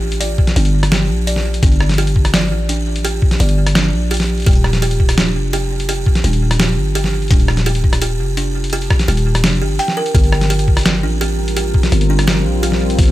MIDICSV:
0, 0, Header, 1, 6, 480
1, 0, Start_track
1, 0, Key_signature, -2, "minor"
1, 0, Tempo, 355030
1, 279, Time_signature, 4, 2, 24, 8
1, 17731, End_track
2, 0, Start_track
2, 0, Title_t, "Kalimba"
2, 0, Program_c, 0, 108
2, 0, Note_on_c, 0, 67, 103
2, 254, Note_off_c, 0, 67, 0
2, 278, Note_on_c, 0, 74, 84
2, 506, Note_off_c, 0, 74, 0
2, 758, Note_on_c, 0, 62, 76
2, 896, Note_off_c, 0, 62, 0
2, 1240, Note_on_c, 0, 67, 100
2, 1695, Note_off_c, 0, 67, 0
2, 1719, Note_on_c, 0, 74, 77
2, 1947, Note_off_c, 0, 74, 0
2, 2198, Note_on_c, 0, 62, 85
2, 2336, Note_off_c, 0, 62, 0
2, 2680, Note_on_c, 0, 67, 103
2, 3135, Note_off_c, 0, 67, 0
2, 3159, Note_on_c, 0, 74, 79
2, 3387, Note_off_c, 0, 74, 0
2, 3637, Note_on_c, 0, 62, 77
2, 3775, Note_off_c, 0, 62, 0
2, 4118, Note_on_c, 0, 67, 102
2, 4574, Note_off_c, 0, 67, 0
2, 4596, Note_on_c, 0, 74, 77
2, 4825, Note_off_c, 0, 74, 0
2, 5077, Note_on_c, 0, 62, 80
2, 5215, Note_off_c, 0, 62, 0
2, 5557, Note_on_c, 0, 67, 98
2, 6014, Note_off_c, 0, 67, 0
2, 6036, Note_on_c, 0, 67, 103
2, 6493, Note_off_c, 0, 67, 0
2, 6520, Note_on_c, 0, 67, 101
2, 6975, Note_off_c, 0, 67, 0
2, 6999, Note_on_c, 0, 62, 77
2, 7136, Note_off_c, 0, 62, 0
2, 7481, Note_on_c, 0, 67, 104
2, 7936, Note_off_c, 0, 67, 0
2, 7960, Note_on_c, 0, 67, 102
2, 8415, Note_off_c, 0, 67, 0
2, 8444, Note_on_c, 0, 62, 77
2, 8579, Note_off_c, 0, 62, 0
2, 8916, Note_on_c, 0, 67, 98
2, 9373, Note_off_c, 0, 67, 0
2, 9401, Note_on_c, 0, 67, 103
2, 9856, Note_off_c, 0, 67, 0
2, 9882, Note_on_c, 0, 62, 82
2, 10018, Note_off_c, 0, 62, 0
2, 10360, Note_on_c, 0, 67, 105
2, 10815, Note_off_c, 0, 67, 0
2, 10840, Note_on_c, 0, 67, 101
2, 11295, Note_off_c, 0, 67, 0
2, 11320, Note_on_c, 0, 62, 78
2, 11457, Note_off_c, 0, 62, 0
2, 11800, Note_on_c, 0, 67, 102
2, 12255, Note_off_c, 0, 67, 0
2, 12279, Note_on_c, 0, 67, 102
2, 12735, Note_off_c, 0, 67, 0
2, 12758, Note_on_c, 0, 62, 81
2, 12896, Note_off_c, 0, 62, 0
2, 13000, Note_on_c, 0, 67, 75
2, 13215, Note_off_c, 0, 67, 0
2, 13237, Note_on_c, 0, 79, 76
2, 13454, Note_off_c, 0, 79, 0
2, 13479, Note_on_c, 0, 70, 98
2, 13695, Note_off_c, 0, 70, 0
2, 13718, Note_on_c, 0, 67, 100
2, 14174, Note_off_c, 0, 67, 0
2, 14198, Note_on_c, 0, 67, 104
2, 14894, Note_off_c, 0, 67, 0
2, 14917, Note_on_c, 0, 62, 78
2, 15055, Note_off_c, 0, 62, 0
2, 15156, Note_on_c, 0, 67, 100
2, 15613, Note_off_c, 0, 67, 0
2, 15639, Note_on_c, 0, 67, 99
2, 16335, Note_off_c, 0, 67, 0
2, 16359, Note_on_c, 0, 62, 79
2, 16496, Note_off_c, 0, 62, 0
2, 16595, Note_on_c, 0, 67, 97
2, 17052, Note_off_c, 0, 67, 0
2, 17075, Note_on_c, 0, 67, 102
2, 17731, Note_off_c, 0, 67, 0
2, 17731, End_track
3, 0, Start_track
3, 0, Title_t, "Ambient pad"
3, 0, Program_c, 1, 92
3, 13715, Note_on_c, 1, 55, 81
3, 13970, Note_on_c, 1, 60, 87
3, 14251, Note_on_c, 1, 70, 88
3, 14419, Note_on_c, 1, 65, 90
3, 17731, Note_off_c, 1, 55, 0
3, 17731, Note_off_c, 1, 60, 0
3, 17731, Note_off_c, 1, 65, 0
3, 17731, Note_off_c, 1, 70, 0
3, 17731, End_track
4, 0, Start_track
4, 0, Title_t, "808-style bass"
4, 0, Program_c, 2, 38
4, 0, Note_on_c, 2, 33, 104
4, 504, Note_off_c, 2, 33, 0
4, 758, Note_on_c, 2, 31, 106
4, 1482, Note_on_c, 2, 34, 94
4, 1503, Note_off_c, 2, 31, 0
4, 2185, Note_off_c, 2, 34, 0
4, 2199, Note_on_c, 2, 31, 101
4, 3397, Note_on_c, 2, 33, 106
4, 3417, Note_off_c, 2, 31, 0
4, 4342, Note_off_c, 2, 33, 0
4, 4597, Note_on_c, 2, 31, 106
4, 5318, Note_on_c, 2, 34, 91
4, 5338, Note_off_c, 2, 31, 0
4, 6023, Note_off_c, 2, 34, 0
4, 6039, Note_on_c, 2, 27, 100
4, 7236, Note_on_c, 2, 29, 107
4, 7257, Note_off_c, 2, 27, 0
4, 8182, Note_off_c, 2, 29, 0
4, 8437, Note_on_c, 2, 27, 106
4, 9155, Note_on_c, 2, 31, 95
4, 9176, Note_off_c, 2, 27, 0
4, 9862, Note_off_c, 2, 31, 0
4, 9877, Note_on_c, 2, 27, 101
4, 11079, Note_on_c, 2, 29, 105
4, 11099, Note_off_c, 2, 27, 0
4, 12023, Note_off_c, 2, 29, 0
4, 12277, Note_on_c, 2, 27, 105
4, 12758, Note_on_c, 2, 29, 98
4, 12778, Note_off_c, 2, 27, 0
4, 12998, Note_on_c, 2, 31, 82
4, 13018, Note_off_c, 2, 29, 0
4, 13238, Note_off_c, 2, 31, 0
4, 13717, Note_on_c, 2, 31, 98
4, 14916, Note_on_c, 2, 33, 107
4, 14937, Note_off_c, 2, 31, 0
4, 15862, Note_off_c, 2, 33, 0
4, 16116, Note_on_c, 2, 31, 104
4, 16838, Note_on_c, 2, 34, 90
4, 16859, Note_off_c, 2, 31, 0
4, 17543, Note_off_c, 2, 34, 0
4, 17558, Note_on_c, 2, 31, 99
4, 17731, Note_off_c, 2, 31, 0
4, 17731, End_track
5, 0, Start_track
5, 0, Title_t, "Sub drop"
5, 0, Program_c, 3, 103
5, 0, Note_on_c, 3, 60, 76
5, 278, Note_off_c, 3, 60, 0
5, 17731, End_track
6, 0, Start_track
6, 0, Title_t, "Drums"
6, 159, Note_on_c, 9, 42, 39
6, 278, Note_off_c, 9, 42, 0
6, 278, Note_on_c, 9, 42, 82
6, 413, Note_off_c, 9, 42, 0
6, 517, Note_on_c, 9, 36, 61
6, 640, Note_on_c, 9, 38, 38
6, 640, Note_on_c, 9, 42, 38
6, 652, Note_off_c, 9, 36, 0
6, 760, Note_off_c, 9, 42, 0
6, 760, Note_on_c, 9, 42, 70
6, 776, Note_off_c, 9, 38, 0
6, 880, Note_off_c, 9, 42, 0
6, 880, Note_on_c, 9, 42, 38
6, 1015, Note_off_c, 9, 42, 0
6, 1121, Note_on_c, 9, 37, 56
6, 1121, Note_on_c, 9, 46, 66
6, 1241, Note_on_c, 9, 38, 124
6, 1241, Note_on_c, 9, 42, 83
6, 1257, Note_off_c, 9, 37, 0
6, 1257, Note_off_c, 9, 46, 0
6, 1376, Note_off_c, 9, 38, 0
6, 1376, Note_off_c, 9, 42, 0
6, 1721, Note_on_c, 9, 42, 71
6, 1842, Note_on_c, 9, 38, 37
6, 1856, Note_off_c, 9, 42, 0
6, 1977, Note_off_c, 9, 38, 0
6, 2083, Note_on_c, 9, 42, 39
6, 2199, Note_on_c, 9, 36, 122
6, 2201, Note_off_c, 9, 42, 0
6, 2201, Note_on_c, 9, 42, 79
6, 2321, Note_on_c, 9, 46, 35
6, 2334, Note_off_c, 9, 36, 0
6, 2336, Note_off_c, 9, 42, 0
6, 2440, Note_on_c, 9, 37, 58
6, 2456, Note_off_c, 9, 46, 0
6, 2561, Note_on_c, 9, 38, 37
6, 2561, Note_on_c, 9, 42, 36
6, 2575, Note_off_c, 9, 37, 0
6, 2620, Note_off_c, 9, 42, 0
6, 2620, Note_on_c, 9, 42, 30
6, 2680, Note_off_c, 9, 42, 0
6, 2680, Note_on_c, 9, 42, 68
6, 2696, Note_off_c, 9, 38, 0
6, 2739, Note_off_c, 9, 42, 0
6, 2739, Note_on_c, 9, 42, 20
6, 2801, Note_off_c, 9, 42, 0
6, 2801, Note_on_c, 9, 42, 37
6, 2918, Note_on_c, 9, 36, 62
6, 2936, Note_off_c, 9, 42, 0
6, 3041, Note_on_c, 9, 37, 52
6, 3041, Note_on_c, 9, 46, 66
6, 3054, Note_off_c, 9, 36, 0
6, 3159, Note_on_c, 9, 38, 126
6, 3159, Note_on_c, 9, 42, 81
6, 3176, Note_off_c, 9, 37, 0
6, 3176, Note_off_c, 9, 46, 0
6, 3294, Note_off_c, 9, 38, 0
6, 3294, Note_off_c, 9, 42, 0
6, 3638, Note_on_c, 9, 42, 71
6, 3774, Note_off_c, 9, 42, 0
6, 3998, Note_on_c, 9, 42, 39
6, 4117, Note_off_c, 9, 42, 0
6, 4117, Note_on_c, 9, 42, 76
6, 4252, Note_off_c, 9, 42, 0
6, 4356, Note_on_c, 9, 36, 64
6, 4478, Note_on_c, 9, 38, 38
6, 4478, Note_on_c, 9, 42, 36
6, 4492, Note_off_c, 9, 36, 0
6, 4597, Note_off_c, 9, 42, 0
6, 4597, Note_on_c, 9, 42, 65
6, 4613, Note_off_c, 9, 38, 0
6, 4715, Note_off_c, 9, 42, 0
6, 4715, Note_on_c, 9, 42, 36
6, 4850, Note_off_c, 9, 42, 0
6, 4955, Note_on_c, 9, 37, 52
6, 4955, Note_on_c, 9, 46, 67
6, 5074, Note_on_c, 9, 38, 127
6, 5074, Note_on_c, 9, 42, 76
6, 5091, Note_off_c, 9, 37, 0
6, 5091, Note_off_c, 9, 46, 0
6, 5209, Note_off_c, 9, 38, 0
6, 5209, Note_off_c, 9, 42, 0
6, 5555, Note_on_c, 9, 42, 62
6, 5597, Note_off_c, 9, 42, 0
6, 5597, Note_on_c, 9, 42, 51
6, 5635, Note_off_c, 9, 42, 0
6, 5635, Note_on_c, 9, 42, 41
6, 5677, Note_off_c, 9, 42, 0
6, 5677, Note_on_c, 9, 38, 38
6, 5677, Note_on_c, 9, 42, 34
6, 5717, Note_off_c, 9, 42, 0
6, 5717, Note_on_c, 9, 42, 28
6, 5812, Note_off_c, 9, 38, 0
6, 5852, Note_off_c, 9, 42, 0
6, 5917, Note_on_c, 9, 42, 16
6, 5947, Note_off_c, 9, 42, 0
6, 5947, Note_on_c, 9, 42, 19
6, 5978, Note_off_c, 9, 42, 0
6, 5978, Note_on_c, 9, 42, 21
6, 6009, Note_off_c, 9, 42, 0
6, 6009, Note_on_c, 9, 42, 23
6, 6037, Note_off_c, 9, 42, 0
6, 6037, Note_on_c, 9, 36, 116
6, 6037, Note_on_c, 9, 42, 71
6, 6067, Note_off_c, 9, 42, 0
6, 6067, Note_on_c, 9, 42, 27
6, 6097, Note_off_c, 9, 42, 0
6, 6097, Note_on_c, 9, 42, 30
6, 6126, Note_off_c, 9, 42, 0
6, 6126, Note_on_c, 9, 42, 31
6, 6157, Note_on_c, 9, 46, 37
6, 6172, Note_off_c, 9, 36, 0
6, 6261, Note_off_c, 9, 42, 0
6, 6277, Note_on_c, 9, 37, 57
6, 6293, Note_off_c, 9, 46, 0
6, 6398, Note_on_c, 9, 38, 37
6, 6398, Note_on_c, 9, 42, 35
6, 6413, Note_off_c, 9, 37, 0
6, 6518, Note_off_c, 9, 42, 0
6, 6518, Note_on_c, 9, 42, 64
6, 6533, Note_off_c, 9, 38, 0
6, 6639, Note_off_c, 9, 42, 0
6, 6639, Note_on_c, 9, 42, 34
6, 6757, Note_on_c, 9, 36, 58
6, 6774, Note_off_c, 9, 42, 0
6, 6879, Note_on_c, 9, 37, 52
6, 6879, Note_on_c, 9, 46, 68
6, 6893, Note_off_c, 9, 36, 0
6, 6999, Note_on_c, 9, 38, 122
6, 6999, Note_on_c, 9, 42, 76
6, 7014, Note_off_c, 9, 37, 0
6, 7014, Note_off_c, 9, 46, 0
6, 7134, Note_off_c, 9, 38, 0
6, 7134, Note_off_c, 9, 42, 0
6, 7479, Note_on_c, 9, 42, 62
6, 7614, Note_off_c, 9, 42, 0
6, 7840, Note_on_c, 9, 42, 36
6, 7960, Note_off_c, 9, 42, 0
6, 7960, Note_on_c, 9, 42, 73
6, 8095, Note_off_c, 9, 42, 0
6, 8198, Note_on_c, 9, 36, 61
6, 8320, Note_on_c, 9, 38, 36
6, 8320, Note_on_c, 9, 42, 36
6, 8333, Note_off_c, 9, 36, 0
6, 8438, Note_off_c, 9, 42, 0
6, 8438, Note_on_c, 9, 42, 62
6, 8455, Note_off_c, 9, 38, 0
6, 8560, Note_off_c, 9, 42, 0
6, 8560, Note_on_c, 9, 42, 35
6, 8695, Note_off_c, 9, 42, 0
6, 8799, Note_on_c, 9, 37, 54
6, 8799, Note_on_c, 9, 46, 70
6, 8918, Note_on_c, 9, 38, 113
6, 8918, Note_on_c, 9, 42, 77
6, 8934, Note_off_c, 9, 37, 0
6, 8934, Note_off_c, 9, 46, 0
6, 9053, Note_off_c, 9, 38, 0
6, 9053, Note_off_c, 9, 42, 0
6, 9399, Note_on_c, 9, 42, 63
6, 9520, Note_on_c, 9, 38, 35
6, 9534, Note_off_c, 9, 42, 0
6, 9655, Note_off_c, 9, 38, 0
6, 9761, Note_on_c, 9, 42, 16
6, 9841, Note_off_c, 9, 42, 0
6, 9841, Note_on_c, 9, 42, 22
6, 9877, Note_off_c, 9, 42, 0
6, 9877, Note_on_c, 9, 36, 113
6, 9877, Note_on_c, 9, 42, 76
6, 9919, Note_off_c, 9, 42, 0
6, 9919, Note_on_c, 9, 42, 27
6, 10000, Note_on_c, 9, 46, 38
6, 10012, Note_off_c, 9, 36, 0
6, 10055, Note_off_c, 9, 42, 0
6, 10117, Note_on_c, 9, 37, 63
6, 10135, Note_off_c, 9, 46, 0
6, 10237, Note_on_c, 9, 38, 36
6, 10237, Note_on_c, 9, 42, 35
6, 10253, Note_off_c, 9, 37, 0
6, 10358, Note_off_c, 9, 42, 0
6, 10358, Note_on_c, 9, 42, 66
6, 10372, Note_off_c, 9, 38, 0
6, 10478, Note_off_c, 9, 42, 0
6, 10478, Note_on_c, 9, 42, 35
6, 10597, Note_on_c, 9, 36, 56
6, 10613, Note_off_c, 9, 42, 0
6, 10718, Note_on_c, 9, 37, 56
6, 10718, Note_on_c, 9, 46, 71
6, 10733, Note_off_c, 9, 36, 0
6, 10836, Note_on_c, 9, 42, 80
6, 10853, Note_off_c, 9, 37, 0
6, 10853, Note_off_c, 9, 46, 0
6, 10972, Note_off_c, 9, 42, 0
6, 11319, Note_on_c, 9, 42, 66
6, 11454, Note_off_c, 9, 42, 0
6, 11680, Note_on_c, 9, 42, 35
6, 11758, Note_off_c, 9, 42, 0
6, 11758, Note_on_c, 9, 42, 28
6, 11799, Note_off_c, 9, 42, 0
6, 11799, Note_on_c, 9, 42, 81
6, 11841, Note_off_c, 9, 42, 0
6, 11841, Note_on_c, 9, 42, 22
6, 11922, Note_on_c, 9, 46, 37
6, 11976, Note_off_c, 9, 42, 0
6, 12038, Note_on_c, 9, 36, 57
6, 12039, Note_on_c, 9, 37, 63
6, 12057, Note_off_c, 9, 46, 0
6, 12160, Note_on_c, 9, 38, 36
6, 12160, Note_on_c, 9, 42, 37
6, 12173, Note_off_c, 9, 36, 0
6, 12175, Note_off_c, 9, 37, 0
6, 12281, Note_off_c, 9, 42, 0
6, 12281, Note_on_c, 9, 42, 66
6, 12296, Note_off_c, 9, 38, 0
6, 12401, Note_off_c, 9, 42, 0
6, 12401, Note_on_c, 9, 42, 36
6, 12536, Note_off_c, 9, 42, 0
6, 12641, Note_on_c, 9, 37, 57
6, 12641, Note_on_c, 9, 46, 70
6, 12760, Note_on_c, 9, 38, 119
6, 12760, Note_on_c, 9, 42, 81
6, 12776, Note_off_c, 9, 37, 0
6, 12776, Note_off_c, 9, 46, 0
6, 12895, Note_off_c, 9, 38, 0
6, 12895, Note_off_c, 9, 42, 0
6, 13239, Note_on_c, 9, 42, 69
6, 13360, Note_on_c, 9, 38, 36
6, 13374, Note_off_c, 9, 42, 0
6, 13495, Note_off_c, 9, 38, 0
6, 13599, Note_on_c, 9, 42, 37
6, 13717, Note_on_c, 9, 36, 120
6, 13719, Note_off_c, 9, 42, 0
6, 13719, Note_on_c, 9, 42, 77
6, 13839, Note_on_c, 9, 46, 35
6, 13852, Note_off_c, 9, 36, 0
6, 13854, Note_off_c, 9, 42, 0
6, 13959, Note_on_c, 9, 37, 64
6, 13974, Note_off_c, 9, 46, 0
6, 14079, Note_on_c, 9, 38, 37
6, 14079, Note_on_c, 9, 42, 39
6, 14094, Note_off_c, 9, 37, 0
6, 14197, Note_off_c, 9, 42, 0
6, 14197, Note_on_c, 9, 42, 69
6, 14214, Note_off_c, 9, 38, 0
6, 14319, Note_off_c, 9, 42, 0
6, 14319, Note_on_c, 9, 42, 40
6, 14436, Note_on_c, 9, 36, 59
6, 14454, Note_off_c, 9, 42, 0
6, 14558, Note_on_c, 9, 37, 57
6, 14558, Note_on_c, 9, 46, 65
6, 14572, Note_off_c, 9, 36, 0
6, 14588, Note_off_c, 9, 46, 0
6, 14588, Note_on_c, 9, 46, 53
6, 14617, Note_off_c, 9, 46, 0
6, 14617, Note_on_c, 9, 46, 44
6, 14647, Note_off_c, 9, 46, 0
6, 14647, Note_on_c, 9, 46, 35
6, 14677, Note_off_c, 9, 46, 0
6, 14677, Note_on_c, 9, 38, 119
6, 14677, Note_on_c, 9, 42, 83
6, 14677, Note_on_c, 9, 46, 28
6, 14693, Note_off_c, 9, 37, 0
6, 14709, Note_off_c, 9, 46, 0
6, 14709, Note_on_c, 9, 46, 24
6, 14812, Note_off_c, 9, 38, 0
6, 14812, Note_off_c, 9, 42, 0
6, 14845, Note_off_c, 9, 46, 0
6, 15157, Note_on_c, 9, 42, 69
6, 15292, Note_off_c, 9, 42, 0
6, 15519, Note_on_c, 9, 42, 39
6, 15636, Note_off_c, 9, 42, 0
6, 15636, Note_on_c, 9, 42, 79
6, 15772, Note_off_c, 9, 42, 0
6, 15877, Note_on_c, 9, 36, 61
6, 15998, Note_on_c, 9, 38, 39
6, 15998, Note_on_c, 9, 42, 38
6, 16012, Note_off_c, 9, 36, 0
6, 16117, Note_off_c, 9, 42, 0
6, 16117, Note_on_c, 9, 42, 72
6, 16134, Note_off_c, 9, 38, 0
6, 16238, Note_off_c, 9, 42, 0
6, 16238, Note_on_c, 9, 42, 40
6, 16374, Note_off_c, 9, 42, 0
6, 16478, Note_on_c, 9, 37, 55
6, 16478, Note_on_c, 9, 46, 65
6, 16598, Note_on_c, 9, 38, 121
6, 16598, Note_on_c, 9, 42, 84
6, 16613, Note_off_c, 9, 37, 0
6, 16613, Note_off_c, 9, 46, 0
6, 16733, Note_off_c, 9, 38, 0
6, 16733, Note_off_c, 9, 42, 0
6, 17076, Note_on_c, 9, 42, 67
6, 17198, Note_on_c, 9, 38, 37
6, 17211, Note_off_c, 9, 42, 0
6, 17333, Note_off_c, 9, 38, 0
6, 17440, Note_on_c, 9, 42, 40
6, 17557, Note_off_c, 9, 42, 0
6, 17557, Note_on_c, 9, 36, 127
6, 17557, Note_on_c, 9, 42, 76
6, 17589, Note_off_c, 9, 42, 0
6, 17589, Note_on_c, 9, 42, 64
6, 17620, Note_off_c, 9, 42, 0
6, 17620, Note_on_c, 9, 42, 52
6, 17650, Note_off_c, 9, 42, 0
6, 17650, Note_on_c, 9, 42, 40
6, 17692, Note_off_c, 9, 36, 0
6, 17731, Note_off_c, 9, 42, 0
6, 17731, End_track
0, 0, End_of_file